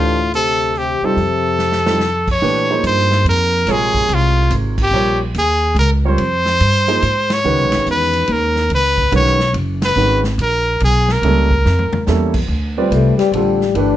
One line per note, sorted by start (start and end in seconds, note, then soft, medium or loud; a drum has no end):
0.00 0.98 D2 medium
0.00 0.31 A2 medium
0.00 0.16 E3 medium
0.00 0.16 A3 medium
0.00 0.16 D4 medium
0.00 0.31 F4 medium
0.00 0.17 G4 medium
0.00 0.17 C5 medium
0.34 0.76 C3 medium
0.34 0.79 A4 medium
0.34 closed hi-hat soft
0.61 open hi-hat soft
0.75 1.02 C3 medium
0.75 1.07 G4 medium
0.75 open hi-hat soft
1.01 2.28 C3 medium
1.01 1.16 G3 medium
1.01 1.16 C4 medium
1.01 1.16 D#4 medium
1.01 1.16 F4 medium
1.01 1.16 G4 medium
1.01 2.29 A4 medium
1.01 muted upright bass stroke soft
1.16 2.38 F2 medium
1.16 open hi-hat soft
1.59 snare soft
1.72 snare medium
1.86 1.99 G3 medium
1.86 1.99 C4 medium
1.86 1.99 D#4 medium
1.86 1.99 F4 medium
1.86 1.99 A4 medium
1.86 snare medium
2.00 snare medium
2.27 kick medium
2.27 crash medium
2.31 2.82 C#5 medium
2.42 2.82 A#2 medium
2.42 2.67 E3 medium
2.42 2.67 A3 medium
2.42 2.67 D4 medium
2.42 2.67 G4 medium
2.42 2.67 B4 medium
2.70 3.59 F3 medium
2.70 3.59 A#3 medium
2.70 3.59 D#4 medium
2.70 3.59 G#4 medium
2.70 3.59 C5 medium
2.83 3.24 G2 medium
2.83 3.24 C5 loud
2.83 hi-hat pedal medium
2.83 ride medium
2.98 snare soft
3.11 snare soft
3.25 3.66 F2 medium
3.25 ride medium
3.29 3.73 A#4 loud
3.66 4.07 A#1 medium
3.66 4.85 C3 medium
3.66 4.85 G#3 medium
3.66 4.85 F4 medium
3.66 4.85 A#4 medium
3.66 4.85 C#5 medium
3.66 snare soft
3.66 ride medium
3.71 4.15 G#4 loud
3.94 kick medium
4.09 4.49 C2 medium
4.09 hi-hat pedal soft
4.09 ride medium
4.14 4.53 F4 medium
4.50 4.91 G#1 medium
4.50 hi-hat pedal medium
4.50 ride medium
4.78 kick medium
4.78 crash medium
4.82 5.19 G4 loud
4.91 5.33 A#1 medium
4.91 5.18 G3 medium
4.91 5.18 C4 medium
4.91 5.18 F4 medium
4.91 5.18 A#4 medium
4.91 5.18 C#5 medium
5.34 5.74 D#2 medium
5.34 hi-hat pedal soft
5.34 ride medium
5.39 5.76 G#4 medium
5.75 6.16 C#2 medium
5.75 ride medium
5.79 5.91 A#4 medium
6.05 6.18 G3 medium
6.05 6.17 C4 medium
6.05 6.18 F4 medium
6.05 6.17 A#4 medium
6.05 7.34 C5 loud
6.05 6.18 C#5 medium
6.18 6.59 F2 medium
6.18 ride medium
6.46 snare medium
6.60 7.01 G2 medium
6.60 hi-hat pedal soft
6.60 ride medium
6.88 7.01 F3 medium
6.88 7.01 A#3 medium
6.88 7.01 D#4 medium
6.88 7.01 G#4 medium
6.88 7.01 C5 medium
6.88 ride medium
7.02 7.43 G#2 medium
7.02 hi-hat pedal medium
7.02 ride medium
7.30 7.88 C#5 medium
7.30 snare medium
7.30 ride medium
7.44 7.58 C#2 medium
7.44 8.61 D#3 medium
7.44 8.62 G#3 medium
7.44 8.62 C#4 medium
7.44 8.62 F#4 medium
7.44 8.62 B4 medium
7.58 7.72 B1 medium
7.72 7.86 G#1 medium
7.72 snare medium
7.72 ride medium
7.86 8.27 E2 medium
7.86 hi-hat pedal medium
7.91 8.33 B4 medium
8.13 ride soft
8.27 8.69 D#2 loud
8.27 ride medium
8.32 8.72 A#4 medium
8.56 snare soft
8.69 9.11 C#2 medium
8.69 ride medium
8.75 9.12 B4 loud
8.98 kick medium
9.12 9.53 B1 medium
9.12 9.37 D#3 medium
9.12 9.37 G#3 medium
9.12 9.37 C#4 medium
9.12 9.37 F#4 medium
9.12 9.37 B4 medium
9.12 9.53 C#5 loud
9.12 hi-hat pedal medium
9.12 ride medium
9.26 snare soft
9.40 snare medium
9.53 9.95 F#1 medium
9.53 ride medium
9.82 10.22 B4 medium
9.82 snare medium
9.82 ride medium
9.96 10.37 G#1 medium
9.96 10.21 D#3 medium
9.96 10.21 G#3 medium
9.96 10.21 C#4 medium
9.96 10.22 F#4 medium
9.96 10.21 B4 medium
10.24 snare medium
10.38 10.79 A#1 loud
10.38 10.79 A#4 medium
10.38 hi-hat pedal medium
10.38 ride medium
10.80 11.21 B1 loud
10.80 ride medium
10.84 11.14 G#4 medium
11.08 12.09 A#4 medium
11.08 snare soft
11.22 11.63 C#2 medium
11.22 11.48 G3 medium
11.22 11.48 A#3 medium
11.22 11.48 C#4 medium
11.22 11.48 E4 medium
11.22 11.48 A4 medium
11.22 ride medium
11.51 kick medium
11.65 11.91 F2 medium
11.65 snare soft
11.65 hi-hat pedal medium
11.79 floor tom medium
11.92 muted upright bass stroke soft
11.92 floor tom loud
12.07 12.47 E2 medium
12.07 12.32 G3 medium
12.07 12.33 A#3 medium
12.07 12.32 C#4 medium
12.07 12.33 E4 medium
12.07 12.33 A4 medium
12.07 snare medium
12.07 hi-hat pedal medium
12.34 kick medium
12.34 crash medium
12.48 12.89 D2 medium
12.77 13.31 G3 medium
12.77 13.31 C4 medium
12.77 12.94 C4 medium
12.77 13.31 F4 medium
12.77 13.31 B4 medium
12.77 13.31 D5 medium
12.90 13.17 C2 medium
12.90 13.18 A3 medium
12.90 hi-hat pedal soft
12.90 ride medium
13.17 13.32 G3 medium
13.17 muted upright bass stroke soft
13.17 snare soft
13.17 ride soft
13.31 13.73 A1 medium
13.31 13.59 D3 medium
13.31 13.59 G3 medium
13.31 13.78 G3 medium
13.31 13.59 C4 medium
13.31 13.59 F4 medium
13.31 13.59 A4 medium
13.31 ride medium
13.61 snare soft
13.74 13.97 G1 medium
13.74 13.97 E3 medium
13.74 13.97 A3 medium
13.74 13.97 D4 medium
13.74 13.97 G4 medium
13.74 13.97 B4 medium
13.74 ride medium